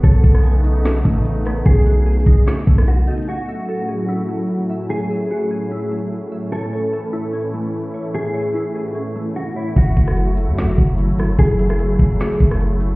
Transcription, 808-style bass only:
X:1
M:4/4
L:1/16
Q:1/4=148
K:F#dor
V:1 name="808-style bass" clef=bass
B,,,2 B,,,8 A,,,6 | B,,,6 B,,,2 z2 B,,,4 z2 | z16 | z16 |
z16 | z16 | F,,,2 F,,,4- F,,, F,,3/2 F,,,3/2 F,,,3 G,,,3/2 F,,,3/2 | F,,,6 F,,,2 z2 F,,,6 |]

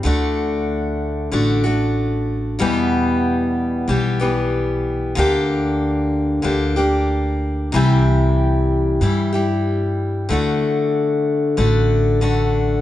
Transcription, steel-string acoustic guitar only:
X:1
M:4/4
L:1/8
Q:1/4=94
K:Dmix
V:1 name="Steel-string acoustic guitar"
[D,A,DF]4 [D,A,DF] [A,DF]3 | [E,,B,,E,G,B,G]4 [E,G,B,G] [E,G,B,G]3 | [D,_B,DG]4 [D,B,DG] [B,DG]3 | [C,E,G,EG]4 [E,G,EG] [G,EG]3 |
[D,A,DF]4 [D,A,DF]2 [D,A,DF]2 |]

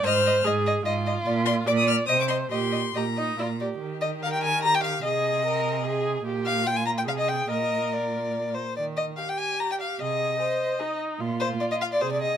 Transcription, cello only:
X:1
M:3/4
L:1/8
Q:1/4=146
K:Eb
V:1 name="Cello" clef=bass
A,,2 A,,2 A,,2 | B,,2 B,,2 C,2 | B,,2 B,,2 B,,2 | E,6 |
C,6 | B,,4 C,2 | B,,4- B,, z | E,2 z4 |
C,2 z4 | B,,2 z2 C,2 |]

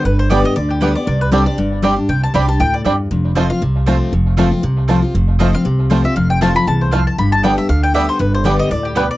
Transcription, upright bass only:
X:1
M:4/4
L:1/8
Q:"Swing" 1/4=236
K:Flyd
V:1 name="Upright bass" clef=bass
G,,,4 D,,4 | C,,4 G,,,4 | C,,2 C,,2 D,,2 E,,2 | F,,,4 C,,4 |
F,,,4 C,,4 | F,,,4 C,,4 | F,,,4 C,,4 | G,,,4 D,,4 |
G,,,4 D,,4 |]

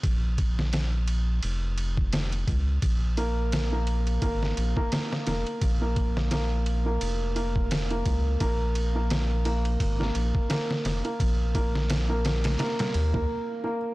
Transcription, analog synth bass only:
X:1
M:4/4
L:1/8
Q:"Swing 16ths" 1/4=86
K:Bbm
V:1 name="Analog synth bass" clef=bass
B,,,4 F,,,3 D,, | B,,,4 A,,, B,,, z F,,, | B,,,4 F,,,3 D,, | B,,,4 A,,, B,,, z F,,, |
B,,,4 z E,, z2 |]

